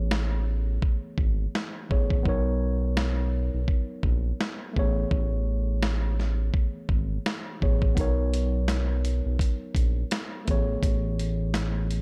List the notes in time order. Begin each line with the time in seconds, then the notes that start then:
Already playing: A1 E3 A3 B3 G#4 C#5
0.11 snare
0.82 kick
1.18 G#1, kick
1.55 snare
1.89 A1 A2 E3 B3 G#4 C#5, kick
2.10 kick
2.23 B1 F#3 B3 D#4, kick
2.27 A#4 C#5
2.97 snare
3.54 B1
3.68 kick
4.03 A#1, kick
4.41 snare
4.73 A1 E3 A3 B3, kick
4.78 G#4 C#5
5.11 A1, kick
5.83 snare
6.20 snare
6.54 kick
6.89 G#1, kick
7.26 snare
7.60 A1 A2 E3 B3 G#4 C#5, kick
7.82 kick
7.95 B1 F#3 B3 D#4, kick, closed hi-hat
7.99 A#4 C#5
8.34 closed hi-hat
8.68 snare, closed hi-hat
9.05 closed hi-hat
9.26 B1
9.39 kick, closed hi-hat
9.75 A#1, kick, closed hi-hat
10.11 snare, closed hi-hat
10.45 A1 E3 A3 B3, kick, closed hi-hat
10.49 G#4 C#5
10.83 A1, kick, closed hi-hat
11.20 closed hi-hat
11.54 snare, closed hi-hat
11.91 closed hi-hat